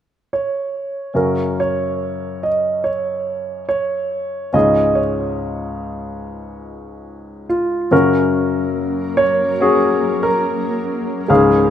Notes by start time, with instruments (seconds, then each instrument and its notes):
0.33 grand piano C#5
1.14 grand piano F#2 C#3 C#4 F#4 A#4
1.60 grand piano C#5
2.43 grand piano D#5
2.84 grand piano C#5
3.69 grand piano C#5
4.53 grand piano C#2 G#2 C#4 F4 G#4 D#5
4.95 grand piano C#5
7.49 grand piano F4
7.89 grand piano F#2 C#3 C#4 F#4 A#4, ambient pad F#3 A#3 C#4 A#4
9.17 grand piano C#5
9.61 grand piano C#4 F#4 G#4
10.23 grand piano A#4
11.28 grand piano C#2 G#2 C#4 G#4 F5, ambient pad C#3 G#3 G#4